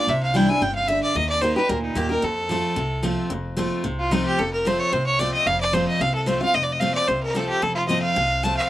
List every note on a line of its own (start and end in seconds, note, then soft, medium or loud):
0.00 0.11 D5 loud
0.07 0.46 C2 medium
0.07 0.59 C3 medium
0.07 0.22 E5 medium
0.23 0.38 F5 medium
0.34 0.48 E3 medium
0.34 0.48 G3 loud
0.34 0.48 D4 medium
0.34 0.47 E4 loud
0.34 0.51 G5 medium
0.48 0.62 D4 medium
0.48 0.61 E4 medium
0.48 0.64 G#5 loud
0.61 1.00 G1 medium
0.61 0.87 C3 medium
0.61 0.74 G5 medium
0.75 0.89 F5 medium
0.88 1.14 D3 loud
0.88 1.02 E5 medium
1.03 1.18 D5 medium
1.15 1.53 D#2 medium
1.15 1.40 D#3 medium
1.15 1.29 D#5 loud
1.29 1.43 D5 medium
1.42 1.55 D#3 medium
1.42 1.56 A#3 medium
1.42 1.56 D#4 loud
1.42 1.55 G4 medium
1.42 1.55 C5 medium
1.56 1.70 D#4 soft
1.56 1.69 G4 medium
1.56 1.71 B4 medium
1.69 1.92 D2 medium
1.69 2.21 A#2 loud
1.69 1.82 A#4 medium
1.82 1.98 D#4 medium
1.95 2.19 D#2 medium
1.95 2.09 D#3 loud
1.95 2.10 A#3 loud
1.95 2.10 D#4 loud
1.95 2.10 G4 medium
1.95 2.08 G4 loud
2.09 2.23 D#4 soft
2.09 2.22 G4 medium
2.09 2.26 A#4 medium
2.22 2.74 F2 medium
2.22 2.61 F2 medium
2.22 3.05 A4 medium
2.49 2.75 F3 medium
2.49 2.76 A3 medium
2.49 2.76 C4 medium
2.49 2.77 F4 medium
2.76 3.15 C2 medium
2.76 3.28 C3 medium
3.03 3.29 F3 medium
3.03 3.29 A3 medium
3.03 3.30 C4 loud
3.03 3.30 F4 medium
3.30 3.69 F1 medium
3.30 3.82 F2 medium
3.56 3.83 F3 medium
3.56 3.83 A3 medium
3.56 3.84 C4 medium
3.56 3.84 F4 loud
3.84 4.23 C2 medium
3.84 4.36 C3 medium
3.99 4.13 F4 medium
4.11 4.37 F3 loud
4.11 4.38 A3 medium
4.11 4.38 C4 loud
4.11 4.25 D#4 medium
4.11 4.38 F4 loud
4.26 4.40 G4 medium
4.38 4.77 F1 medium
4.38 4.90 F2 medium
4.38 4.52 A4 medium
4.53 4.68 A#4 medium
4.65 4.91 F3 medium
4.65 4.92 A3 medium
4.65 4.92 C4 loud
4.65 4.92 F4 loud
4.65 4.81 C5 medium
4.79 4.94 C#5 loud
4.92 5.31 C2 medium
4.92 5.44 C3 medium
4.92 5.06 C5 medium
5.06 5.20 C#5 medium
5.19 5.45 F3 loud
5.19 5.45 A3 medium
5.19 5.46 C4 loud
5.19 5.46 F4 loud
5.19 5.33 D5 loud
5.34 5.48 D#5 loud
5.46 5.84 F1 medium
5.46 5.98 F2 medium
5.46 5.60 F5 loud
5.61 5.75 D5 medium
5.73 5.99 F3 loud
5.73 5.99 A3 loud
5.73 6.00 C4 loud
5.73 6.00 F4 medium
5.73 5.87 C5 medium
5.88 6.03 D#5 medium
6.00 6.38 C2 medium
6.00 6.52 C3 loud
6.00 6.14 F5 loud
6.15 6.28 A4 medium
6.26 6.40 F3 medium
6.26 6.41 A3 medium
6.26 6.41 C4 loud
6.26 6.39 F4 loud
6.26 6.41 C5 medium
6.41 6.55 C4 soft
6.41 6.54 F4 medium
6.41 6.56 F5 loud
6.54 6.92 F1 medium
6.54 7.05 F2 medium
6.54 6.65 D#5 medium
6.63 6.74 D5 medium
6.72 6.81 D#5 medium
6.80 7.07 F3 medium
6.80 7.07 A3 loud
6.80 7.07 C4 loud
6.80 7.08 F4 medium
6.80 6.94 F5 loud
6.95 7.09 D5 loud
7.07 7.46 C2 medium
7.07 7.60 C3 medium
7.07 7.22 C5 medium
7.23 7.38 A#4 medium
7.34 7.60 F3 medium
7.34 7.61 A3 loud
7.34 7.61 C4 loud
7.34 7.61 F4 loud
7.34 7.48 A4 medium
7.49 7.64 G4 medium
7.62 8.01 F1 medium
7.62 8.13 F2 medium
7.62 7.74 A4 medium
7.75 7.83 F4 medium
7.88 8.15 F3 medium
7.88 8.15 A3 medium
7.88 8.15 C4 medium
7.88 8.16 F4 loud
7.88 8.01 D#5 medium
8.02 8.45 F5 loud
8.16 8.54 C2 medium
8.16 8.67 C3 medium
8.43 8.69 F3 medium
8.43 8.69 A3 medium
8.43 8.70 C4 loud
8.43 8.70 F4 loud
8.43 8.56 A5 loud
8.57 8.69 F5 loud